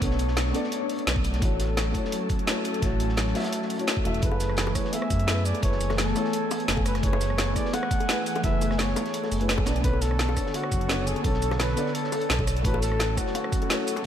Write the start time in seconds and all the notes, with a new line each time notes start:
Already playing: A3 D4 A4 C#5
0.00 B1 B3 D4 A4, kick, closed hi-hat
0.04 C#5
0.11 snare
0.19 closed hi-hat
0.28 snare
0.37 snare, closed hi-hat
0.46 snare
0.53 B3 D4 A4 D5, closed hi-hat
0.64 snare
0.72 closed hi-hat
0.90 closed hi-hat, open hi-hat
0.99 closed hi-hat
1.07 B1, snare, closed hi-hat
1.16 kick
1.24 closed hi-hat
1.33 snare, closed hi-hat
1.39 A1 F#3 A3 C#4 E4 F#4 A4, kick, closed hi-hat
1.45 C#5
1.59 snare, closed hi-hat
1.77 snare, closed hi-hat
1.92 A3 E4 F#4, kick, closed hi-hat
1.97 C#5
2.05 snare
2.12 closed hi-hat
2.29 kick, closed hi-hat
2.39 closed hi-hat
2.46 A3 E4 F#4 C#5, snare, closed hi-hat
2.56 snare
2.65 closed hi-hat
2.74 closed hi-hat
2.80 A1 A3 E4 F#4, kick, snare, closed hi-hat
2.85 C#5
3.00 closed hi-hat
3.09 snare
3.17 snare, closed hi-hat
3.27 snare
3.34 A3 E4 F#4 E5, snare, closed hi-hat
3.40 snare, closed hi-hat
3.44 snare, closed hi-hat
3.53 closed hi-hat
3.62 snare
3.70 closed hi-hat, open hi-hat
3.78 A3 E4 F#4 C#5, closed hi-hat
3.87 snare, closed hi-hat
3.97 kick
4.04 E1 A3 E4 F#4 E5, closed hi-hat
4.14 closed hi-hat
4.20 F#1 E3 A3 B3 E4 G#4 B4 G#5, kick, closed hi-hat
4.25 B4
4.32 high bongo
4.40 snare, closed hi-hat, shaker
4.49 cross-stick
4.57 snare, closed hi-hat
4.67 high bongo
4.73 A3 E4 G#4 C#5, kick, cross-stick, closed hi-hat, shaker
4.78 B4
4.85 snare
4.93 E5, closed hi-hat, high bongo
5.02 cross-stick
5.10 F#2, kick, closed hi-hat, shaker
5.19 closed hi-hat
5.27 A3 E4 G#4 B4, snare, closed hi-hat, high bongo
5.37 snare
5.45 D5, closed hi-hat, shaker
5.54 closed hi-hat, high bongo
5.60 F#1 A3 E4 G#4 C#5, kick, closed hi-hat
5.66 B4
5.72 snare
5.81 closed hi-hat, shaker
5.90 cross-stick, snare, high bongo
5.98 A4, snare, closed hi-hat
6.07 snare
6.14 A3 E4 G#4 C#5, closed hi-hat, high bongo, shaker
6.25 snare
6.33 closed hi-hat
6.51 closed hi-hat, open hi-hat, high bongo, shaker
6.60 closed hi-hat
6.68 F#1, snare, closed hi-hat
6.77 kick, high bongo
6.86 B4, cross-stick, closed hi-hat, shaker
6.95 cross-stick, snare, closed hi-hat
7.01 F#1 A3 E4 G#4 C#5, kick, closed hi-hat
7.06 B4
7.13 high bongo
7.21 snare, closed hi-hat, shaker
7.30 cross-stick
7.38 snare, closed hi-hat, high bongo
7.54 A3 E4 G#4 D5, kick, cross-stick, closed hi-hat, shaker
7.59 B4
7.65 snare
7.73 F#5, closed hi-hat, high bongo
7.83 cross-stick
7.91 kick, closed hi-hat, shaker
8.00 closed hi-hat, high bongo
8.07 A3 E4 G#4 B4, snare, closed hi-hat
8.18 snare
8.26 F#5, closed hi-hat, shaker
8.36 closed hi-hat, high bongo
8.41 F#1 A3 E4 G#4 E5, kick, snare, closed hi-hat
8.46 B4
8.61 closed hi-hat, high bongo, shaker
8.71 cross-stick, snare
8.78 C#5, snare, closed hi-hat
8.88 snare
8.95 A3 E4 G#4 C#5, closed hi-hat, high bongo, shaker
9.06 snare, closed hi-hat
9.14 closed hi-hat
9.23 snare, high bongo
9.32 F#1, closed hi-hat, open hi-hat, shaker
9.39 A3 E4 G#4 B4, closed hi-hat
9.48 snare, closed hi-hat
9.58 kick, high bongo
9.65 B1 D3 B3 D4 A4 C#5 D5, cross-stick, snare, closed hi-hat, shaker
9.76 closed hi-hat
9.82 B1 B3 D4 A4 B4, kick, closed hi-hat
9.87 C#5
9.93 high bongo
10.01 A4, snare, closed hi-hat, shaker
10.11 cross-stick
10.19 snare, closed hi-hat
10.29 high bongo
10.34 B3 D4 A4, kick, cross-stick, closed hi-hat, shaker
10.40 C#5
10.46 snare
10.54 F#4, closed hi-hat, high bongo
10.64 cross-stick
10.71 F#1, kick, closed hi-hat, shaker
10.81 closed hi-hat
10.88 B3 D4 A4 C#5, snare, closed hi-hat, high bongo
10.99 snare
11.07 G#4, closed hi-hat, shaker
11.16 closed hi-hat, high bongo
11.22 B1 B3 D4 A4, kick, closed hi-hat
11.27 C#5
11.34 snare
11.42 closed hi-hat, shaker
11.51 cross-stick, snare, high bongo
11.59 B4, snare, closed hi-hat
11.68 snare
11.76 B3 D4 A4 D5, closed hi-hat, high bongo, shaker
11.86 snare
11.95 A4, closed hi-hat
12.04 snare
12.12 closed hi-hat, open hi-hat, high bongo, shaker
12.21 closed hi-hat
12.29 B1, snare, closed hi-hat
12.39 kick, high bongo
12.47 cross-stick, closed hi-hat, shaker
12.57 closed hi-hat
12.62 A1 F#3 A3 C#4 E4 F#4 B4, kick, closed hi-hat
12.68 C#5
12.74 high bongo
12.82 A4, snare, closed hi-hat, shaker
12.92 cross-stick
12.99 snare, closed hi-hat, high bongo
13.15 A3 E4 F#4, kick, cross-stick, closed hi-hat, shaker
13.20 C#5
13.26 snare
13.35 closed hi-hat, high bongo
13.44 cross-stick
13.52 kick, closed hi-hat, shaker
13.62 closed hi-hat, high bongo
13.69 A3 E4 F#4 C#5, snare, closed hi-hat
13.80 snare
13.87 closed hi-hat, shaker
13.96 closed hi-hat, high bongo
14.02 A3